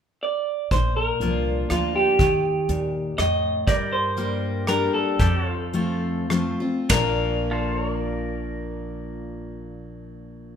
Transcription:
0.23 0.68 D5 medium
0.71 1.10 A#1 medium
0.71 1.66 A#2 medium
0.71 0.96 C5 medium
0.71 kick medium
0.71 closed hi-hat medium
0.97 1.73 A#4 medium
1.20 1.62 C2 medium
1.20 1.68 F3 medium
1.20 1.68 A#3 medium
1.20 1.68 D4 soft
1.20 1.69 F4 medium
1.20 closed hi-hat medium
1.70 2.12 D2 medium
1.70 2.17 F3 soft
1.70 2.18 A#3 soft
1.70 2.18 D4 medium
1.70 1.95 F4 medium
1.70 2.18 F4 medium
1.70 cross-stick medium
1.70 closed hi-hat medium
1.96 3.22 G4 medium
2.19 2.58 D#2 medium
2.19 3.14 D#3 medium
2.19 kick medium
2.19 closed hi-hat medium
2.69 3.11 D#2 medium
2.69 3.16 A#2 medium
2.69 closed hi-hat medium
3.18 3.60 F2 medium
3.18 3.66 A2 medium
3.18 3.64 D#5 medium
3.18 cross-stick medium
3.18 closed hi-hat medium
3.67 4.86 G2 medium
3.67 4.63 G2 medium
3.67 5.18 G4 medium
3.67 5.19 A#4 medium
3.67 3.74 D5 medium
3.67 5.19 D5 medium
3.67 kick medium
3.67 closed hi-hat medium
3.93 4.64 C5 medium
4.17 4.65 G3 medium
4.17 4.65 A#3 medium
4.17 4.66 D4 medium
4.17 4.66 G4 medium
4.17 closed hi-hat soft
4.67 5.17 G3 medium
4.67 5.17 A#3 soft
4.67 5.18 D4 medium
4.67 5.18 G4 medium
4.67 4.94 A#4 medium
4.67 cross-stick medium
4.67 closed hi-hat medium
4.94 6.56 A4 medium
5.19 6.52 F2 medium
5.19 6.25 F2 medium
5.19 5.37 G4 medium
5.19 6.89 A4 medium
5.19 5.39 D5 medium
5.19 kick medium
5.19 closed hi-hat medium
5.37 5.49 F#4 medium
5.37 5.50 C#5 medium
5.49 6.89 F4 medium
5.49 6.90 C5 medium
5.73 6.27 F3 medium
5.73 6.28 A3 medium
5.73 6.28 C4 medium
5.73 6.28 F4 medium
5.73 closed hi-hat medium
6.30 6.58 F3 medium
6.30 6.59 A3 medium
6.30 6.59 C4 medium
6.30 6.59 F4 medium
6.30 cross-stick medium
6.30 closed hi-hat medium
6.60 6.90 C4 soft
6.60 6.89 F4 medium
6.89 10.56 A#1 medium
6.89 10.56 A#2 medium
6.89 10.56 F3 medium
6.89 10.56 A#3 medium
6.89 10.56 D4 medium
6.89 10.56 F4 medium
6.89 10.56 A#4 medium
6.89 kick medium
6.89 snare medium
6.89 ride bell medium
7.51 10.56 F4 medium
7.51 7.83 A4 medium
7.51 7.76 C5 medium
7.76 7.92 C#5 medium
7.83 10.56 A#4 medium
7.92 10.56 D5 medium

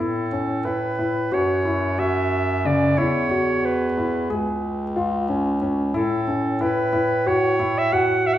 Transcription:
0.00 1.29 A2 medium
0.00 0.25 E4 medium
0.00 0.67 A4 medium
0.32 0.59 C#4 medium
0.65 0.92 E4 medium
0.65 1.35 B4 medium
0.99 1.25 E4 medium
1.32 2.96 F#2 medium
1.32 1.58 F#4 medium
1.32 2.01 C#5 medium
1.65 1.92 E4 medium
1.98 2.52 F#4 medium
1.98 2.67 E5 medium
2.65 2.92 C#3 medium
2.65 3.00 D5 medium
2.98 4.29 E2 medium
2.98 3.25 E4 medium
2.98 3.67 C#5 medium
3.31 3.84 F#4 medium
3.65 4.40 B4 medium
3.98 4.24 E4 medium
4.30 5.93 C#2 medium
4.30 4.83 G#4 medium
4.96 5.23 F4 medium
5.29 5.56 C#4 medium
5.62 5.89 C#4 medium
5.94 8.38 A2 medium
5.94 6.21 E4 medium
5.94 6.63 A4 medium
6.27 6.54 C#4 medium
6.61 6.87 E4 medium
6.61 7.29 B4 medium
6.93 7.20 E4 medium
7.26 7.53 F#4 medium
7.26 7.80 C#5 medium
7.60 7.86 E4 medium
7.78 7.94 E5 medium
7.93 8.38 F#4 medium
7.93 8.28 F#5 medium
8.27 8.35 E5 medium
8.34 8.38 F#5 medium

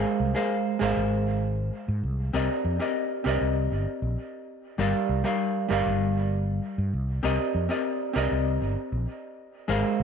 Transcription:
0.00 0.31 G#3 medium
0.00 0.32 G#4 medium
0.00 0.32 A#4 medium
0.00 0.32 C5 medium
0.00 0.33 F5 medium
0.20 0.33 C2 medium
0.34 0.77 G#3 medium
0.34 0.77 G#4 medium
0.34 0.78 A#4 medium
0.34 0.78 C5 medium
0.34 0.78 F5 medium
0.79 0.94 G#1 medium
0.79 2.30 G#3 medium
0.79 2.30 G#4 medium
0.79 2.31 A#4 medium
0.79 2.31 C5 medium
0.79 2.31 F5 loud
0.97 1.69 G#1 medium
1.88 2.01 G#2 loud
2.03 2.30 C2 medium
2.33 2.47 C2 medium
2.33 2.76 C4 medium
2.33 2.76 G4 medium
2.33 2.77 A#4 medium
2.33 2.77 D5 medium
2.33 2.77 D#5 medium
2.65 2.78 F2 medium
2.79 3.22 C4 medium
2.79 3.22 G4 medium
2.79 3.23 A#4 medium
2.79 3.23 D5 medium
2.79 3.23 D#5 medium
3.24 3.39 C2 medium
3.24 4.74 C4 loud
3.24 4.75 G4 medium
3.24 4.75 A#4 medium
3.24 4.76 D5 medium
3.28 4.76 D#5 loud
3.41 3.67 C2 medium
3.72 3.85 G1 medium
4.02 4.15 A#1 medium
4.78 4.92 G1 medium
4.78 5.21 G3 medium
4.78 5.21 G4 medium
4.78 5.22 A#4 medium
4.78 5.22 D5 medium
4.78 5.22 F5 medium
5.09 5.23 C2 medium
5.24 5.67 G3 medium
5.24 5.67 G4 medium
5.24 5.67 A#4 medium
5.24 5.67 D5 medium
5.24 5.68 F5 medium
5.69 5.84 G1 medium
5.69 7.19 G3 medium
5.69 7.20 G4 medium
5.69 7.20 A#4 medium
5.69 7.21 D5 medium
5.73 7.21 F5 loud
5.86 6.59 G1 medium
6.78 6.91 G2 loud
6.93 7.19 C2 loud
7.23 7.37 C2 loud
7.23 7.66 C4 medium
7.23 7.66 G4 medium
7.23 7.66 A#4 medium
7.23 7.67 D5 medium
7.23 7.67 D#5 loud
7.55 7.68 F2 loud
7.69 8.12 C4 medium
7.69 8.12 G4 medium
7.69 8.12 A#4 medium
7.69 8.12 D5 medium
7.69 8.13 D#5 medium
8.13 8.29 C2 medium
8.13 9.64 C4 medium
8.13 9.65 G4 medium
8.13 9.65 A#4 medium
8.13 9.66 D5 medium
8.18 9.66 D#5 loud
8.31 8.57 C2 medium
8.62 8.75 G1 medium
8.92 9.05 A#1 loud
9.68 9.82 G#1 loud
9.68 10.03 G#3 medium
9.68 10.03 G#4 medium
9.68 10.03 A#4 medium
9.68 10.03 C5 medium
9.68 10.03 F5 medium
10.00 10.03 C2 medium

